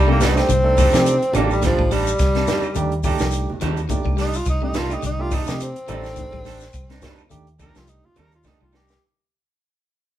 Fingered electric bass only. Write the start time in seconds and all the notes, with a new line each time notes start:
Already playing: C2
0.49 C2
0.94 C3
1.35 A1
1.79 A1
2.20 C2
2.76 D#2
3.21 C2
3.62 D#2
4.06 C2
4.46 C2
5.03 C2
5.48 C3
5.89 A1
6.33 A1
6.74 C2
7.32 D#2
7.76 C2
8.18 D#2
8.62 C2